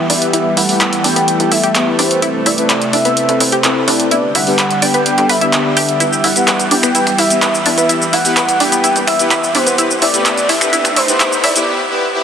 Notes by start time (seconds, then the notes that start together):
Already playing: E3 G3 B3
0.10 E2 B3 D4 E4 G4 B4 E5, open hi-hat
0.22 closed hi-hat
0.33 A3 B3 E4 G4 B4, closed hi-hat
0.57 E1 E4 F#5, open hi-hat
0.69 B3 E4 G4 B4, open hi-hat
0.81 B4, clap, closed hi-hat
0.93 closed hi-hat
1.04 E1 B3 D4 E4 G4 B4 G5, open hi-hat
1.16 B3, closed hi-hat
1.28 closed hi-hat
1.40 E1 B3 E4 G4 A4, closed hi-hat
1.52 E1 E4 E5, open hi-hat
1.64 G4, closed hi-hat
1.75 B3 E4 G4 B4, clap, closed hi-hat
1.99 E2 B3 D4 E4 G4 B4 C5, open hi-hat
2.11 closed hi-hat
2.22 C3 C4 E4 A4 B4, closed hi-hat
2.46 A1 E4 D5, open hi-hat
2.58 C4 E4 A4 B4, closed hi-hat
2.70 B4, clap, closed hi-hat
2.82 closed hi-hat
2.93 A1 C4 D4 E4 A4 B4 E5, open hi-hat
3.05 B3, closed hi-hat
3.17 closed hi-hat
3.29 A1 C4 E4 A4 B4, closed hi-hat
3.40 A1 E4 C5, open hi-hat
3.52 G4, closed hi-hat
3.64 C4 E4 A4 B4, clap, closed hi-hat
3.88 A2 C4 D4 E4 A4 B4 D5, open hi-hat
4.00 closed hi-hat
4.11 D3 G3 B3 D4 E4 G4 B4, closed hi-hat
4.35 G1 E4 F#5, open hi-hat
4.47 B3 D4 G4 B4, open hi-hat
4.59 B4, clap, closed hi-hat
4.71 closed hi-hat
4.82 G1 B3 D4 G4 B4 G5, open hi-hat
4.94 B3, closed hi-hat
5.06 closed hi-hat
5.18 G2 B3 D4 G4 A4, closed hi-hat
5.29 G1 B4 E5, open hi-hat
5.41 B3 D4 E4 G4 E5, closed hi-hat
5.53 clap, closed hi-hat
5.65 B3 D4 G4 E5
5.77 G1 B3 D4 G4 A4 E5, open hi-hat
5.89 closed hi-hat
6.00 E3 B3 E4 G4 B4, closed hi-hat, riser, shaker
6.13 shaker
6.24 E1 E4 F#5, open hi-hat
6.36 B3 E4 G4 B4, closed hi-hat, shaker
6.48 B4, clap, closed hi-hat, shaker
6.60 closed hi-hat, shaker
6.71 E1 B3 D4 E4 G4 B4 G5, open hi-hat
6.83 B3, finger snap, closed hi-hat, shaker
6.95 B3 E4 G4 B4, closed hi-hat, shaker
7.07 E1, finger snap, closed hi-hat, shaker
7.18 E1 E4 E5, open hi-hat
7.30 B3 E4 G4 B4, closed hi-hat, shaker
7.42 B4, clap, closed hi-hat, shaker
7.55 shaker
7.66 E2 B3 D4 E4 G4 B4 E5, open hi-hat
7.78 B3, closed hi-hat, shaker
7.89 B3 E4 G4 B4, closed hi-hat, shaker
8.02 shaker
8.13 E1 E4 F#5, open hi-hat
8.25 B3 E4 G4 B4, open hi-hat, shaker
8.37 B4, clap, closed hi-hat, shaker
8.49 closed hi-hat, shaker
8.60 E1 B3 D4 E4 G4 B4 G5, open hi-hat
8.72 B3, closed hi-hat, shaker
8.84 B3 E4 G4 B4, closed hi-hat, shaker
8.96 E1, closed hi-hat, shaker
9.07 E1 E4 E5, finger snap, open hi-hat
9.19 B3 E4 G4 B4, closed hi-hat, shaker
9.31 B4, clap, closed hi-hat, shaker
9.44 shaker
9.55 E2 B3 D4 E4 G4 B4 C5, open hi-hat
9.67 B3, closed hi-hat, shaker
9.78 C3 A3 B3 E4 G4 B4, closed hi-hat, shaker
9.91 shaker
10.02 A1 E4 D5, open hi-hat
10.14 B3 E4 G4 B4, closed hi-hat, shaker
10.26 B3 E4 G4 B4, clap, closed hi-hat, shaker
10.38 closed hi-hat, shaker
10.49 A1 E4 E5, open hi-hat
10.61 B3 E4 G4 B4, finger snap, closed hi-hat, shaker
10.73 B3 E4 G4 B4, closed hi-hat, shaker
10.85 A1, finger snap, closed hi-hat, shaker
10.96 A1 E4 C5, open hi-hat
11.08 B3 E4 G4 B4, closed hi-hat, shaker
11.20 B3 E4 G4 B4, clap, closed hi-hat, shaker
11.33 shaker
11.44 A2 E4 D5, open hi-hat
11.56 B3 E4 G4 B4, closed hi-hat, shaker
11.67 B3 E4 G4 B4
11.91 B3 E4 G4 B4
12.15 B3 E4 G4 B4